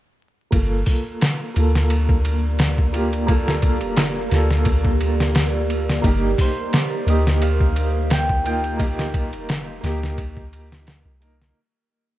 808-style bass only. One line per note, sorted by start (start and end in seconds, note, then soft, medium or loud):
0.53 0.83 G1 loud
1.56 3.83 D2 medium
3.81 4.29 F1 medium
4.32 6.01 D2 medium
6.04 6.35 G1 medium
7.07 9.34 D2 medium
9.33 9.80 F1 medium
9.84 11.05 D2 medium
11.05 11.53 C2 loud